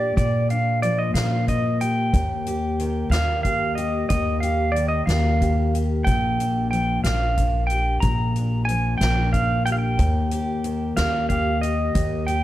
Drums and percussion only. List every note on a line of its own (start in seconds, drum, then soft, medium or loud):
0.17 kick medium
0.17 closed hi-hat medium
0.50 closed hi-hat soft
0.83 closed hi-hat soft
1.15 snare medium
1.15 closed hi-hat medium
1.48 kick medium
1.48 closed hi-hat soft
1.81 closed hi-hat soft
2.13 kick medium
2.13 closed hi-hat medium
2.46 closed hi-hat soft
2.79 closed hi-hat soft
3.12 snare medium
3.12 closed hi-hat medium
3.45 kick medium
3.45 closed hi-hat soft
3.77 closed hi-hat medium
4.10 kick medium
4.10 closed hi-hat medium
4.43 closed hi-hat soft
4.76 closed hi-hat soft
5.09 snare medium
5.09 closed hi-hat medium
5.42 kick medium
5.42 closed hi-hat soft
5.75 closed hi-hat soft
6.07 kick medium
6.07 closed hi-hat medium
6.40 closed hi-hat soft
6.73 closed hi-hat soft
7.04 snare medium
7.04 closed hi-hat medium
7.37 kick medium
7.37 closed hi-hat soft
7.70 closed hi-hat soft
8.02 kick medium
8.02 closed hi-hat medium
8.36 closed hi-hat soft
8.69 closed hi-hat soft
9.01 snare medium
9.01 closed hi-hat medium
9.34 kick medium
9.34 closed hi-hat soft
9.66 closed hi-hat soft
9.99 kick medium
9.99 closed hi-hat medium
10.31 closed hi-hat soft
10.64 closed hi-hat medium
10.97 snare medium
10.97 closed hi-hat medium
11.30 kick medium
11.30 closed hi-hat soft
11.63 closed hi-hat soft
11.95 kick medium
11.95 closed hi-hat medium
12.28 closed hi-hat soft